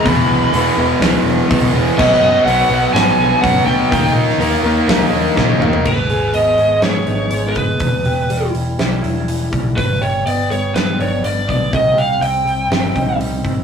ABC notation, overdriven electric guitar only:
X:1
M:4/4
L:1/8
Q:1/4=123
K:D#phr
V:1 name="Overdriven electric guitar" clef=bass
[E,,B,,E,]2 [E,,B,,E,] [E,,B,,E,] [E,,B,,E,]2 [E,,B,,E,] [E,,B,,E,] | [B,,F,B,]2 [B,,F,B,] [B,,F,B,] [B,,F,B,]2 [B,,F,B,] [B,,F,B,] | [D,A,D]2 [D,A,D] [D,A,D] [D,A,D]2 [D,A,D] [D,A,D] | [K:G#m] z8 |
z8 | z8 | z8 |]